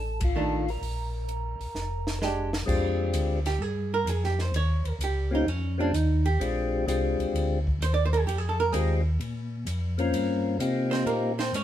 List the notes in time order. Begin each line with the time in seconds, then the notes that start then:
Already playing: A1 A4
0.21 F4, kick, ride
0.36 D#3 A3 D4
0.68 A#4, open hi-hat
0.81 A#1, open hi-hat
1.29 closed hi-hat
1.60 A#1, open hi-hat
1.75 F1, snare
2.07 snare
2.22 G#3 D4 G4, snare
2.53 snare
2.66 F2 G#3 C4 D4 F4 G4, kick, crash
3.13 D2, hi-hat pedal, ride
3.46 G4, snare, ride
3.59 G2 G#4
3.94 A#4
4.06 F2 G#4, hi-hat pedal, ride
4.24 G4, snare
4.39 C5, snare, ride
4.53 D#2 C#5, ride
4.85 D#2 A#4, ride
4.99 C#2, hi-hat pedal, ride
5.04 G4
5.31 A#3 C4 C#4 D#4 F4 G4
5.46 F2 C#4, ride
5.78 A#3 C4 C#4 D4 F4 G4
5.93 D#2 D#4, hi-hat pedal, ride
6.25 G4, ride
6.40 A#1 G#3 C4 D4 F4 G4, ride
6.86 C2 G#3 C4 D4 F4 G4, hi-hat pedal, ride
7.19 C2, ride
7.34 D2, ride
7.67 kick
7.81 D#2 C5, hi-hat pedal, ride
7.94 D5
8.06 C5
8.13 A#4, ride
8.20 G#4
8.27 F2 G4, ride
8.38 G#4
8.49 A4
8.60 A#4
8.72 D#2 G#3 C4 D#4 F4 G4 G#4, hi-hat pedal, ride
9.20 A#2, ride
9.66 F2, hi-hat pedal, ride
9.98 A#3 C4 C#4 F4 A#4, ride
10.13 G2, ride
10.59 C3 A#3 C4 D#4 F4 G4, hi-hat pedal, ride
10.91 C4 C5, snare, ride
11.06 A#2 A#3 A#4, ride
11.39 C4 C5, snare
11.53 G#2 C#4 C#5, hi-hat pedal, ride